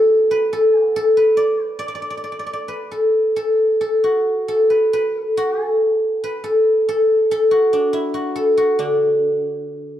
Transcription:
Already playing: A3 B3 D4 E4 F#4 A4 B4 D5 E5 F#5 A5 B5
0.31 B4
0.53 A4
0.80 F#4
0.96 A4
1.17 B4
1.37 D5
1.65 B4
1.79 D5
1.88 D5
1.95 D5
2.02 D5
2.10 D5
2.17 D5
2.24 D5
2.32 D5
2.39 D5
2.46 D5
2.53 D5
2.68 B4
2.91 A4
3.36 A4
3.81 A4
4.04 F#4
4.48 A4
4.70 B4
4.93 B4
5.19 A4
5.37 F#4
5.63 A4
6.24 B4
6.44 A4
6.89 A4
7.31 A4
7.51 F#4
7.73 D4
7.93 E4
8.14 F#4
8.36 A4
8.57 F#4
8.79 D3 D4

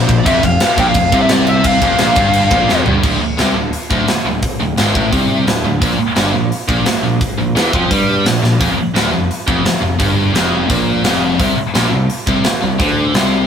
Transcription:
Already playing: C5
0.07 A#1 A#2, kick, crash
0.18 D5
0.24 F1 F2 E5, kick, crash
0.42 F1 F2 F5, kick, crash
0.60 snare, crash
0.76 A#1 A#2 G5, kick, crash
0.87 F5
0.94 F1 F2, kick, crash
1.12 C2 C3, kick, crash
1.22 E5
1.29 D5, snare, crash
1.47 E5, crash
1.64 F5, kick, crash
1.81 F1 F2, kick, crash
1.98 A#1 A#2, snare, crash
2.16 G1 G2, kick, crash
2.33 crash
2.50 A#1 A#2, kick, crash
2.69 F1 F2, snare
2.86 G1 G2, floor tom
3.03 D1 D2, kick, crash
3.20 muted picked electric bass stroke, muted distorted electric guitar stroke
3.38 C2 C3, snare, open hi-hat
3.55 D1 D2
3.73 open hi-hat
3.91 D1 D2, kick
4.07 muted picked electric bass stroke, muted distorted electric guitar stroke, snare, open hi-hat
4.25 D1 D2
4.42 kick, open hi-hat
4.60 D1 D2
4.77 G#1 G#2, snare, open hi-hat
4.94 A1 A2, kick
5.11 C2 C3, kick, open hi-hat
5.47 D1 D2, snare, open hi-hat
5.64 D1 D2
5.81 A#1 A#2, kick, open hi-hat
5.99 muted distorted electric guitar stroke, muted picked electric bass stroke
6.16 G1 G2, snare, open hi-hat
6.34 A#1 A#2
6.52 open hi-hat
6.68 A#1 A#2, kick
6.86 muted picked electric bass stroke, muted distorted electric guitar stroke, snare, open hi-hat
7.03 A#1 A#2
7.21 kick, open hi-hat
7.38 A#1 A#2
7.56 E2 E3, snare, open hi-hat
7.73 F2 F3, kick
7.91 G2 G3, kick, open hi-hat
8.25 A#1 A#2, snare, open hi-hat
8.43 A#1 A#2, snare
8.60 F1 F2, kick, open hi-hat
8.77 muted picked electric bass stroke, muted distorted electric guitar stroke
8.94 D1 D2, snare, open hi-hat
9.12 F1 F2
9.31 open hi-hat
9.47 F1 F2, kick
9.64 muted distorted electric guitar stroke, muted picked electric bass stroke, snare, open hi-hat
9.81 F1 F2
9.99 G1 G2, kick, open hi-hat
10.34 F1 F2, snare, open hi-hat
10.70 A#1 A#2, kick, open hi-hat
11.04 F1 F2, snare, open hi-hat
11.40 C2 C3, kick, open hi-hat
11.56 muted distorted electric guitar stroke, muted picked electric bass stroke
11.74 A#1 A#2, snare, open hi-hat
11.92 C2 C3
12.10 open hi-hat
12.27 C2 C3, kick
12.44 muted distorted electric guitar stroke, muted picked electric bass stroke, snare, open hi-hat
12.62 C2 C3
12.79 D2 D3, kick, open hi-hat
13.14 C2 C3, snare, open hi-hat

